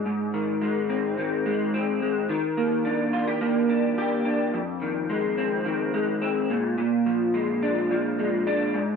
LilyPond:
\new Staff \with { instrumentName = "Clean electric guitar" } { \clef bass \time 4/4 \key bes \mixolydian \tempo 4 = 107 aes,8 ees8 aes8 c'8 ees8 aes8 c'8 aes8 | ees8 bes8 d'8 f'16 g'16 bes8 d'8 g'8 d'8 | f,8 ees8 aes8 c'8 ees8 aes8 c'8 bes,8 | bes,8 f8 aes8 d'8 f8 aes8 d'8 aes,8 | }